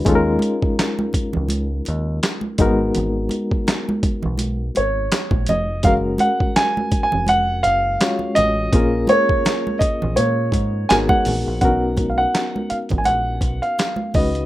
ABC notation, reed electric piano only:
X:1
M:4/4
L:1/8
Q:"Swing 16ths" 1/4=83
K:Blyd
V:1 name="Reed electric piano"
[G,CDE=A^A]6- [G,CDE=A^A] [G,A,B,DFA]- | [G,A,B,DFA]6- [G,A,B,DFA] z | [G,CFA]6 [G,CEFc]2 | [A,^B,CEGA]6 [=B,DFGA]2 |
[B,C=D^DFA]6- [B,C=D^DFA] [G,CDFB] |]